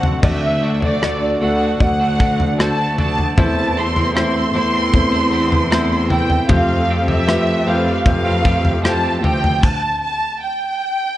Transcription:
Already playing: D2 D3 A3 C4 D4 F#4 A4 C5 F#5
0.03 floor tom
0.22 D2 D3 A3 D4 F#4 A4 D5 E5, kick, floor tom, crash
0.62 D3 A3 D4 F#4
0.82 A3 D4 F#4 D5, floor tom
1.01 D3 A3 D4 F#4 D5, cross-stick
1.41 D2 D3 A3 D4 F#4 A4 F#5
1.60 A3 D4 F#4
1.80 D2 A3 D4 F#4 D5 F#5, kick, floor tom
2.00 A3 D4 F#4
2.19 D3 A3 D4 F#4, kick
2.40 floor tom
2.59 D3 A3 D4 F#4 C5 A5, cross-stick
2.78 A3 D4 F#4
2.98 D2 D3 A3 D4 F#4 A5, floor tom
3.18 floor tom
3.37 E2 E3 A3 C4 E4 C5 A5, kick, floor tom
3.76 E3 A3 C4 E4 C6
3.96 A3 C4 E4, floor tom
4.15 E3 A3 C4 E4 C5 C6, cross-stick
4.34 A3 C4 E4
4.54 E2 E3 A3 C4 E4 C5
4.73 A3 C4 E4
4.93 A3 C4 E4 C5, kick, floor tom
5.12 A3 C4 E4
5.32 E3 A3 C4 E4
5.52 floor tom
5.71 E3 A3 C4 E4 C5, cross-stick
5.90 A3 C4 E4
6.09 E3 A3 C4 E4 G5, floor tom
6.30 floor tom
6.48 F2 F3 A3 C4 F4 G4 A4 C5 F5, kick, floor tom
6.88 F3 A3 C4 G4
7.08 A3 C4 G4 E5, floor tom
7.27 F3 A3 C4 F4 G4 B4, cross-stick
7.66 F2 F3 A3 C4 F4 G4 C5 F5
7.86 A3 C4 G4
8.06 F2 A3 F4 G4 C5 F5, kick, floor tom
8.25 A3 C4 G4
8.44 F3 A3 C4 G4, kick
8.65 floor tom
8.84 F3 A3 C4 F4 G4 C5 A5, cross-stick
9.03 A3 C4 G4
9.23 D2 F3 A3 C4 G4 G5, floor tom
9.44 floor tom
9.63 A5, kick, crash
10.02 A5
10.42 G5

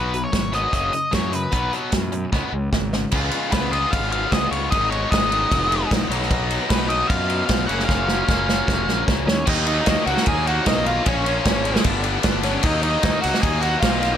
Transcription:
Already playing: B1 B2 F#3 B3 B4
0.14 B2 F#3, closed hi-hat
0.24 C#5
0.32 G#1 B2 F#3, kick, snare, closed hi-hat
0.52 B2 F#3 B3 D#5, closed hi-hat
0.72 F#1 F#2 C#3 F#3 D#5, kick, closed hi-hat
0.92 F#2 C#3, closed hi-hat
1.12 F#2 C#3 F#3 C#5, kick, snare, closed hi-hat
1.32 F#2 C#3 B4, closed hi-hat
1.52 B1 B2 F#3 B3, kick, closed hi-hat
1.73 B2 F#3 B3, closed hi-hat
1.92 F#2 B2 F#3, kick, snare, closed hi-hat
2.12 B2 F#3, closed hi-hat
2.32 C#2 C#3 G#3 B3, kick, snare
2.52 C#2 C#3 G#3
2.72 G#1 C#3 G#3, kick, snare
2.93 C#3 G#3, snare
3.11 C#2 C#3 G#3 B3, kick, crash
3.16 F4
3.31 ride
3.52 C#2 B4, kick, snare, ride
3.71 G#3 B3 F4 D#5, ride
3.75 C#3
3.91 G#1 F5, kick, ride
4.12 F5, ride
4.32 C#2 D#5, kick, snare, ride
4.51 C#2 C#5, ride
4.71 G#1 G#2 D#3 G#3 B3 D#5, kick, ride
4.75 D#4
4.91 C#5, ride
5.11 G#1 D#5, kick, snare, ride
5.30 G#2 D#3 G#3 B3 D#4, ride
5.52 F1, kick, ride
5.72 ride
5.91 A#1, kick, snare, ride
6.09 B1 B2 F#3 B3, ride
6.13 D#4
6.23 snare
6.31 kick, ride
6.50 ride
6.68 B1 B2 F#3 B3 B4, kick, snare, ride
6.72 D#4
6.88 D#4 D#5, ride
7.07 F#2 F4 F5, kick, ride
7.30 ride
7.46 B1 F4 F5, kick, snare, ride
7.66 F#1 F#2 C#3 F#3 A#3 F#4 F#5, ride
7.71 C#4
7.80 snare
7.85 F#1 F4 F5, kick
7.89 snare
8.09 snare
8.28 F#1 F#2 C#3 F#3 A#3 C#4, kick, snare
8.49 snare
8.68 F1, kick, snare
8.87 A#1, snare
9.08 C#2, kick, snare
9.26 D#2 C#4 C#5, snare
9.46 D#2 D#3 F#3 A#3 D#4 D#5, kick, crash
9.66 A#3 D#4 D#5, ride
9.71 F#3
9.86 D#2 D#3 F#3 A#3 D#4, kick, snare, ride
10.06 C#2 F#3 A#3 D#4 F#4 F#5, ride
10.17 snare
10.26 D#2 G#4 G#5, kick, ride
10.46 F#3 A#3 D#4 F#4 F#5, ride
10.64 B1 D#3 F#3 A#3 D#4 D#5, kick, snare, ride
10.86 F4 F5, ride
11.03 A#1 A#2 F3 A#3 C#4, kick, ride
11.08 C#5
11.24 F3 A#3 C#4, ride
11.44 G#1 A#2 F3 A#3 C#4, kick, snare, ride
11.64 F3 A#3 C#4, ride
11.76 snare
11.84 G1 G2 D3 G3 B3 D4, kick, ride
12.03 G3 B3 D4, ride
12.22 G1 D3 G3 B3 D4, kick, snare, ride
12.43 C#4 C#5, snare, ride
12.63 D#2 D#3 F#3 A#3 D#4 D#5, kick, ride
12.67 D#4
12.83 F#3 A#3 D#4 D#5, ride
13.02 D#2 D#3 F#3 A#3 D#4, kick, snare, ride
13.21 C#2 A#3 D#4 F#4 F#5, ride
13.25 F#3
13.34 snare
13.41 D#2 G#4 G#5, kick, ride
13.60 A#3 D#4 F#4 F#5, ride
13.65 F#3
13.80 B1 D#3 F#3 A#3 D#4 F4 F5, kick, snare, ride
14.00 F4 F5, snare, ride
14.14 B3

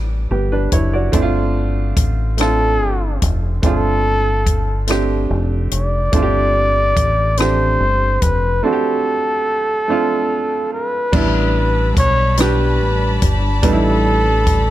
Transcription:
Already playing: A1 G3 B3 C#4 D4 G4
0.31 G1 B3 G4
0.52 D4 B4
0.72 F#1 E4 C#5, kick, closed hi-hat
0.93 F#4 D5
1.12 G1 A3 C4 D4 E4, kick, closed hi-hat
1.22 F4
1.97 A1, kick, closed hi-hat
2.37 A3 C4 D4 F4 A4, cross-stick, closed hi-hat
2.81 G1
3.22 F1, kick, closed hi-hat
3.62 G1 A3 C4 D4 F4 A4, kick, closed hi-hat
4.46 kick, closed hi-hat
4.87 A3 C4 D4 G4, cross-stick, closed hi-hat
5.30 F1
5.71 F1 D5, closed hi-hat
6.12 G1 A3 C4 D4 F4, kick, closed hi-hat
6.22 G4
6.97 A1, kick, closed hi-hat
7.37 A3 C4 D4 G4 C5, cross-stick, closed hi-hat
7.80 G1
8.21 F1 B4, kick, closed hi-hat
8.63 A3 C4 D4 F#4 A4
8.73 G4
9.88 A3 C4 D4 F4
10.73 B4
11.12 A1 G3 B3 D4 E4 A5 B5, kick, crash
11.97 B1 C#5, kick, closed hi-hat
12.37 G3 B3 D4 G4 B4, cross-stick, closed hi-hat
12.80 A1
13.22 G1, kick, closed hi-hat
13.63 A1 G3 B3 D4 D#4 A4, kick, closed hi-hat
13.73 E4
14.47 kick, closed hi-hat

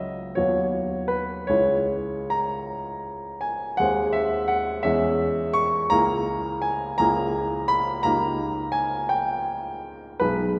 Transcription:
Already playing: C#2 F#3 A#3 C#4 D#5 E5
0.35 D#2 F#3 B3 F#4 C#5
1.08 B4
1.47 C#2 G#3 C#4 E4 C#5
2.30 A#5
3.41 G#5
3.77 D#2 G#3 C4 G#4 F#5
4.13 E5
4.48 F#5
4.83 E2 G#3 C#4 G#4 E5
5.53 C#6
5.90 C#2 A#3 E4 G#4 A#5
6.62 G#5
6.98 C#2 A#3 E4 G#4 A#5
7.68 B5
8.03 C#2 A#3 D#4 G4 A#5
8.72 G#5
9.09 G5
10.20 B1 G#3 D#4 G#4 B4

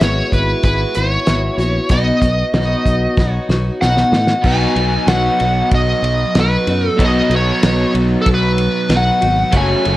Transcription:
0.00 G#1 G#3 B3 E4 F#4 C#5, snare, closed hi-hat
0.32 G#1 B4, kick, closed hi-hat
0.63 G#1 G#3 B3 E4 F#4 B4, kick, closed hi-hat
0.94 G#1 B3 E4 F#4 C#5, closed hi-hat
1.26 G#1 G#3 B3 E4 F#4, snare, closed hi-hat
1.58 A#1 B3 E4 F#4, closed hi-hat
1.89 B1 B2 F#3 B3 D#4 F#4 D#5, kick, closed hi-hat
2.22 B1 D#4 F#4, kick, closed hi-hat
2.26 B3
2.54 B1 B2 F#3 B3 D#4 F#4, snare, closed hi-hat
2.86 B1, kick, closed hi-hat
3.17 B1 F#3 B3 D#4 F#4, kick, snare
3.32 C#5
3.49 B1 D#4 F#4, snare
3.53 B3
3.81 B1 B2 F#3 B3 D#4 F#4 F#5, snare
3.97 snare
4.12 A2 D#4 F#4, snare
4.18 B3
4.27 snare
4.44 B1 B2 F#3 B3 D#4 F#4 G#5, kick, crash
4.76 B1 D#4 F#4, ride
4.80 B3
5.07 B1 F#3 B3 D#4 F#4 F#5, snare, ride
5.39 B1 B3 D#4 F#4, ride
5.71 B1 D#5, kick, ride
6.02 B1, ride
6.35 B1 F#3 B3 D#4, snare, ride
6.40 F#4 B4
6.67 F#2 B3 D#4 F#4, ride
6.88 A4
6.99 B1 B2 F#3 B3 D#4 F#4, kick, ride
7.05 D#5
7.30 B1 B3 D#4 F#4, ride
7.36 C#5
7.63 B1 F#3 B3 D#4 F#4, snare, ride
7.93 B1 B3 D#4 F#4, ride
8.21 A4
8.26 B1, kick, ride
8.34 B4
8.58 ride
8.89 B1 F#3 B3 D#4 F#4, snare, ride
8.97 F#5
9.21 G#1 B3 D#4 F#4, ride
9.51 F#1 F#2 C#3 F#3 A3 C#4 A4 F#5 C#6, kick, ride
9.55 F#4 G#5
9.85 F#1 F#3 A3 C#4 F#4, ride

